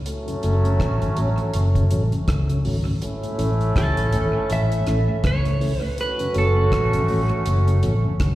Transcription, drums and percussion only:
0.06 closed hi-hat medium
0.28 closed hi-hat soft
0.43 closed hi-hat medium
0.65 closed hi-hat soft
0.80 kick loud
0.80 cross-stick loud
0.80 closed hi-hat medium
1.02 closed hi-hat medium
1.17 closed hi-hat medium
1.38 closed hi-hat soft
1.54 closed hi-hat loud
1.75 kick medium
1.75 closed hi-hat medium
1.91 closed hi-hat medium
2.12 closed hi-hat soft
2.28 kick loud
2.28 cross-stick loud
2.28 closed hi-hat medium
2.49 closed hi-hat soft
2.65 open hi-hat medium
3.02 closed hi-hat medium
3.23 closed hi-hat soft
3.39 closed hi-hat medium
3.61 closed hi-hat soft
3.76 kick loud
3.76 cross-stick loud
3.76 closed hi-hat medium
3.97 closed hi-hat medium
4.13 closed hi-hat medium
4.50 closed hi-hat medium
4.72 closed hi-hat medium
4.87 cross-stick medium
4.87 closed hi-hat medium
5.24 kick loud
5.24 cross-stick loud
5.24 closed hi-hat medium
5.45 closed hi-hat medium
5.61 open hi-hat medium
5.98 closed hi-hat medium
6.19 closed hi-hat soft
6.34 closed hi-hat medium
6.72 kick loud
6.72 cross-stick loud
6.72 closed hi-hat medium
6.93 closed hi-hat medium
7.08 open hi-hat soft
7.29 closed hi-hat soft
7.46 closed hi-hat loud
7.68 closed hi-hat medium
7.83 closed hi-hat medium
8.20 kick loud
8.20 cross-stick loud
8.20 closed hi-hat medium

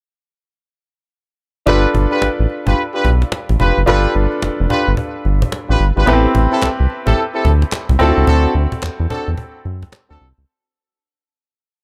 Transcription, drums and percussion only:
1.67 cajon bass loud
1.95 cajon bass medium
2.12 cajon slap soft
2.22 cajon slap loud
2.50 cajon slap soft
2.67 cajon bass medium
3.05 cajon bass medium
3.22 cajon slap medium
3.32 cajon slap loud
3.49 cajon bass medium
3.60 cajon bass medium
3.77 cajon slap soft
3.87 cajon bass loud
4.15 cajon slap soft
4.32 cajon slap soft
4.42 cajon slap loud
4.70 cajon bass medium
4.88 cajon slap soft
4.97 cajon bass medium
5.25 cajon slap soft
5.42 cajon bass loud
5.42 cajon slap medium
5.52 cajon slap loud
5.81 cajon slap soft
5.97 cajon slap soft
6.07 cajon bass loud
6.35 cajon bass medium
6.52 cajon slap soft
6.62 cajon slap loud
6.62 clap medium
6.90 cajon slap soft
7.07 cajon bass medium
7.18 cajon slap soft
7.45 cajon bass medium
7.62 cajon slap medium
7.72 cajon slap loud
7.72 clap medium
7.89 cajon bass medium
8.00 cajon bass medium
8.17 cajon slap soft
8.27 cajon bass loud
8.55 cajon slap soft
8.72 cajon bass medium
8.83 cajon slap loud
8.83 clap medium
9.10 cajon bass loud
9.38 cajon bass medium
9.65 cajon slap soft
9.83 cajon bass loud
9.83 cajon slap medium
9.92 cajon slap loud
9.92 clap medium

